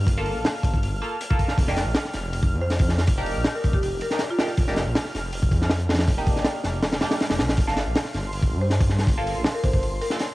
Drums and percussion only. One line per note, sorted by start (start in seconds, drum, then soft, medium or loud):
0.07 kick loud
0.07 open hi-hat medium
0.26 open hi-hat medium
0.45 snare loud
0.45 open hi-hat medium
0.63 kick medium
0.63 open hi-hat medium
0.74 kick loud
0.83 open hi-hat medium
1.21 open hi-hat medium
1.31 kick medium
1.39 kick medium
1.39 open hi-hat medium
1.48 snare soft
1.58 kick loud
1.58 open hi-hat medium
1.68 snare soft
1.76 snare medium
1.76 open hi-hat medium
1.95 snare loud
1.95 open hi-hat medium
2.05 snare soft
2.13 snare soft
2.13 open hi-hat medium
2.33 open hi-hat medium
2.43 kick medium
2.70 snare soft
2.70 open hi-hat medium
2.79 kick loud
2.79 open hi-hat medium
2.89 snare soft
2.98 snare soft
2.98 open hi-hat medium
3.07 kick loud
3.07 open hi-hat medium
3.26 open hi-hat medium
3.44 snare loud
3.44 open hi-hat loud
3.64 kick loud
3.64 open hi-hat medium
3.73 kick loud
3.83 open hi-hat medium
4.01 open hi-hat medium
4.10 snare soft
4.19 snare soft
4.19 open hi-hat medium
4.39 snare loud
4.39 open hi-hat medium
4.48 snare soft
4.57 kick loud
4.57 open hi-hat medium
4.67 snare soft
4.76 snare medium
4.76 open hi-hat medium
4.95 snare loud
4.95 open hi-hat medium
5.05 snare soft
5.14 snare soft
5.14 open hi-hat medium
5.33 open hi-hat medium
5.43 kick medium
5.51 kick loud
5.51 open hi-hat medium
5.62 snare medium
5.70 snare loud
5.70 open hi-hat medium
5.79 closed hi-hat soft
5.89 snare medium
5.89 open hi-hat medium
5.94 snare medium
5.94 open hi-hat medium
5.98 snare loud
5.98 open hi-hat medium
6.08 kick loud
6.08 open hi-hat medium
6.27 kick loud
6.27 open hi-hat medium
6.36 snare soft
6.44 snare loud
6.44 open hi-hat medium
6.64 snare medium
6.64 open hi-hat medium
6.82 snare loud
6.82 open hi-hat medium
6.92 snare loud
6.92 open hi-hat medium
7.01 snare loud
7.01 open hi-hat medium
7.11 snare loud
7.11 open hi-hat medium
7.20 snare loud
7.20 open hi-hat medium
7.30 snare loud
7.30 open hi-hat medium
7.39 snare loud
7.39 open hi-hat medium
7.49 snare loud
7.49 open hi-hat medium
7.57 kick loud
7.57 open hi-hat medium
7.68 snare soft
7.77 snare medium
7.77 open hi-hat medium
7.95 snare loud
7.95 open hi-hat loud
8.05 snare medium
8.14 snare soft
8.14 open hi-hat medium
8.33 open hi-hat medium
8.42 kick loud
8.70 snare soft
8.70 open hi-hat medium
8.81 kick loud
8.81 open hi-hat medium
8.89 snare soft
8.98 snare soft
8.98 open hi-hat medium
9.07 kick loud
9.07 open hi-hat medium
9.27 open hi-hat medium
9.45 snare loud
9.45 open hi-hat medium
9.64 kick loud
9.64 open hi-hat medium
9.74 kick loud
9.83 open hi-hat medium
10.01 open hi-hat medium
10.10 snare soft
10.20 snare soft
10.20 open hi-hat medium